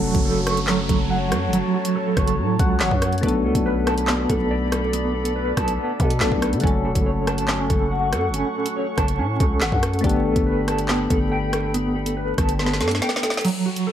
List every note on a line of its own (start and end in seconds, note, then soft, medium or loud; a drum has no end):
0.00 0.67 F#3 loud
0.00 3.18 F#3 medium
0.00 3.19 A3 medium
0.00 3.19 C#4 medium
0.00 3.20 F#4 medium
0.00 3.21 A4 medium
0.00 3.20 C#5 medium
0.00 3.20 A5 medium
0.00 downlifter medium
0.04 0.14 E1 loud
0.04 0.88 F#4 medium
0.15 0.59 F#1 loud
0.15 kick loud
0.15 closed hi-hat medium
0.25 1.53 A4 loud
0.47 1.74 C#6 medium
0.47 cross-stick loud
0.47 closed hi-hat medium
0.57 0.75 G1 loud
0.57 closed hi-hat medium
0.67 1.52 F#3 medium
0.67 snare loud
0.67 clap medium
0.73 0.88 F#1 loud
0.89 1.33 F#1 loud
0.89 1.31 F#4 medium
0.89 kick loud
0.89 closed hi-hat medium
1.10 2.38 F#5 medium
1.32 1.49 F#2 loud
1.32 1.73 F#4 medium
1.32 cross-stick loud
1.32 closed hi-hat medium
1.48 1.63 F#1 loud
1.53 2.37 F#3 loud
1.53 closed hi-hat medium
1.74 2.58 F#4 medium
1.85 closed hi-hat medium
1.96 3.23 A4 medium
2.17 2.40 F#1 loud
2.17 3.23 C#6 medium
2.17 kick loud
2.17 cross-stick loud
2.17 closed hi-hat medium
2.28 closed hi-hat medium
2.38 2.58 A2 loud
2.38 3.23 F#3 medium
2.59 2.82 C#2 loud
2.59 3.01 F#4 medium
2.59 2.79 F#5 medium
2.59 kick loud
2.59 closed hi-hat medium
2.80 2.91 G1 loud
2.80 3.00 C#5 medium
2.80 3.23 F#5 loud
2.80 snare loud
2.80 clap medium
2.80 closed hi-hat medium
2.91 3.22 F#2 loud
2.91 kick medium
3.01 3.23 F#4 medium
3.01 3.21 C#5 medium
3.01 cross-stick loud
3.01 closed hi-hat medium
3.13 closed hi-hat soft
3.18 6.16 A3 medium
3.18 closed hi-hat soft
3.23 3.46 B1 loud
3.23 6.17 B3 medium
3.23 4.07 B3 loud
3.23 6.17 D4 medium
3.23 6.18 F#4 medium
3.23 13.40 A4 medium
3.23 6.60 D5 medium
3.23 6.60 B5 medium
3.23 kick loud
3.23 closed hi-hat medium
3.27 6.19 A4 medium
3.27 closed hi-hat medium
3.44 3.55 C#2 loud
3.44 4.28 A4 medium
3.55 4.27 B1 loud
3.55 kick loud
3.55 closed hi-hat medium
3.66 4.93 B4 medium
3.87 5.15 A5 medium
3.87 cross-stick loud
3.87 closed hi-hat medium
3.98 closed hi-hat medium
4.07 4.92 B3 medium
4.07 snare loud
4.07 clap medium
4.30 5.53 B1 loud
4.30 4.71 A4 medium
4.30 kick loud
4.30 closed hi-hat medium
4.51 5.78 D5 medium
4.72 5.13 A4 medium
4.72 cross-stick loud
4.72 closed hi-hat medium
4.93 5.77 B3 loud
4.93 closed hi-hat medium
5.15 5.99 A4 medium
5.25 closed hi-hat medium
5.36 6.21 B4 medium
5.57 5.78 B1 loud
5.57 6.64 A5 medium
5.57 kick loud
5.57 cross-stick loud
5.57 closed hi-hat medium
5.68 closed hi-hat medium
5.78 6.64 B3 medium
6.00 6.23 B2 loud
6.00 6.41 A4 medium
6.00 kick loud
6.00 closed hi-hat medium
6.10 closed hi-hat medium
6.20 6.31 A1 loud
6.20 6.61 A3 medium
6.20 6.64 B3 medium
6.20 6.64 D4 medium
6.20 6.64 F#4 medium
6.20 6.65 A4 medium
6.20 6.64 D5 medium
6.20 snare loud
6.20 clap medium
6.20 closed hi-hat medium
6.32 6.54 B1 loud
6.32 kick medium
6.42 6.64 A4 medium
6.42 cross-stick loud
6.42 closed hi-hat medium
6.53 6.63 D3 loud
6.53 closed hi-hat medium
6.60 6.86 F#1 loud
6.60 9.99 F#3 medium
6.60 9.99 A3 medium
6.60 10.00 C#4 medium
6.60 7.48 C#4 loud
6.60 10.01 F#5 medium
6.60 10.01 C#6 medium
6.60 kick loud
6.60 closed hi-hat medium
6.65 10.01 F#4 medium
6.65 10.01 A4 medium
6.65 closed hi-hat medium
6.85 6.95 E1 loud
6.85 7.69 A4 medium
6.95 7.40 F#1 loud
6.95 kick loud
6.95 closed hi-hat medium
7.06 8.34 C#5 medium
7.27 8.55 A5 medium
7.27 cross-stick loud
7.27 closed hi-hat medium
7.38 7.56 G1 loud
7.38 closed hi-hat medium
7.48 8.33 C#4 medium
7.48 snare loud
7.48 clap medium
7.54 7.69 F#1 loud
7.70 8.14 F#1 loud
7.70 8.11 A4 medium
7.70 kick medium
7.70 closed hi-hat medium
7.91 9.19 F#5 loud
8.12 8.30 F#2 loud
8.12 8.54 A4 medium
8.12 cross-stick loud
8.12 closed hi-hat medium
8.28 8.44 F#1 loud
8.34 9.18 C#4 loud
8.34 closed hi-hat medium
8.55 9.39 A4 medium
8.66 closed hi-hat medium
8.76 10.04 C#5 loud
8.98 9.20 F#1 loud
8.98 10.04 A5 medium
8.98 kick loud
8.98 cross-stick loud
8.98 closed hi-hat medium
9.08 closed hi-hat medium
9.19 9.39 A2 loud
9.19 10.04 C#4 medium
9.40 9.63 C#2 loud
9.40 9.81 A4 medium
9.40 kick loud
9.40 closed hi-hat medium
9.61 9.72 G1 loud
9.61 10.04 F#5 loud
9.61 snare loud
9.61 clap medium
9.61 closed hi-hat medium
9.72 10.03 F#2 loud
9.72 kick loud
9.83 10.04 A4 medium
9.83 cross-stick loud
9.83 closed hi-hat medium
9.93 closed hi-hat soft
9.99 13.39 A3 medium
9.99 13.40 B3 medium
9.99 closed hi-hat soft
10.04 10.27 G1 loud
10.04 10.88 B3 loud
10.04 13.40 D4 medium
10.04 13.41 G4 medium
10.04 13.42 A4 medium
10.04 13.41 G5 medium
10.04 13.41 B5 medium
10.04 kick loud
10.04 closed hi-hat medium
10.09 closed hi-hat medium
10.25 10.35 A1 loud
10.25 11.09 A4 medium
10.36 11.07 G1 loud
10.36 kick loud
10.36 closed hi-hat medium
10.47 11.74 B4 loud
10.68 11.95 A5 medium
10.68 cross-stick loud
10.68 closed hi-hat medium
10.79 closed hi-hat medium
10.88 11.73 B3 medium
10.88 snare loud
10.88 clap medium
11.10 12.34 G1 loud
11.10 11.52 A4 medium
11.10 kick loud
11.10 closed hi-hat medium
11.32 12.59 G5 loud
11.53 11.94 A4 medium
11.53 cross-stick loud
11.53 closed hi-hat medium
11.74 12.58 B3 loud
11.74 closed hi-hat medium
11.96 12.79 A4 medium
12.06 closed hi-hat medium
12.17 13.45 B4 medium
12.38 12.82 G1 loud
12.38 13.45 A5 medium
12.38 kick loud
12.38 cross-stick loud
12.38 closed hi-hat medium
12.49 closed hi-hat medium
12.59 13.44 B3 medium
12.59 snare medium
12.66 snare medium
12.74 snare medium
12.81 13.01 G2 loud
12.81 13.22 A4 medium
12.81 snare medium
12.81 closed hi-hat medium
12.88 snare medium
12.88 closed hi-hat medium
12.95 snare medium
13.02 13.44 G5 medium
13.02 snare medium
13.02 closed hi-hat medium
13.09 snare medium
13.16 snare loud
13.23 13.44 A4 medium
13.23 snare medium
13.23 closed hi-hat medium
13.30 snare loud
13.30 closed hi-hat medium
13.37 snare loud
13.37 closed hi-hat medium
13.44 13.92 F#3 loud
13.44 closed hi-hat medium
13.44 crash loud
13.44 downlifter medium
13.48 closed hi-hat medium
13.66 13.92 F#4 medium
13.76 closed hi-hat medium
13.87 13.92 A4 loud